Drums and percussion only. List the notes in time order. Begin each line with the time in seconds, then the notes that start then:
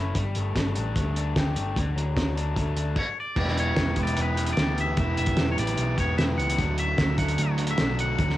0.15 kick, closed hi-hat
0.35 closed hi-hat
0.56 kick, snare, closed hi-hat
0.75 closed hi-hat
0.96 kick, closed hi-hat
1.16 closed hi-hat
1.36 kick, snare, closed hi-hat
1.56 closed hi-hat
1.76 kick, closed hi-hat
1.98 closed hi-hat
2.17 kick, snare, closed hi-hat
2.37 closed hi-hat
2.56 kick, closed hi-hat
2.77 closed hi-hat
2.96 kick, crash
3.36 kick, crash
3.48 snare
3.58 closed hi-hat
3.77 kick, snare, closed hi-hat
3.96 kick, closed hi-hat
4.07 closed hi-hat
4.17 closed hi-hat
4.37 closed hi-hat
4.47 closed hi-hat
4.57 snare, closed hi-hat
4.78 closed hi-hat
4.97 kick, closed hi-hat
5.17 closed hi-hat
5.26 kick, closed hi-hat
5.37 snare, closed hi-hat
5.58 closed hi-hat
5.67 closed hi-hat
5.77 closed hi-hat
5.98 kick, closed hi-hat
6.18 snare, closed hi-hat
6.39 closed hi-hat
6.50 closed hi-hat
6.59 kick, closed hi-hat
6.78 closed hi-hat
6.98 kick, snare, closed hi-hat
7.18 kick, closed hi-hat
7.28 closed hi-hat
7.38 closed hi-hat
7.58 closed hi-hat
7.67 closed hi-hat
7.78 snare, closed hi-hat
7.99 closed hi-hat
8.19 kick, closed hi-hat
8.29 snare